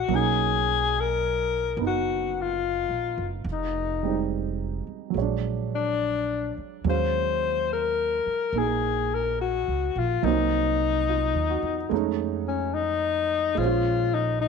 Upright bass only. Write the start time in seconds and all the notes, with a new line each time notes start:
0.09 B1
1.77 F#1
2.89 A#1
3.18 F#1
3.44 F1
4.87 muted upright bass stroke
5.14 A#1
6.58 muted upright bass stroke
6.84 D#2
8.26 muted upright bass stroke
8.53 A#1
9.68 C#2
9.96 A#1
10.23 C2
11.35 D#2
11.62 E2
11.91 F2
13.57 A#1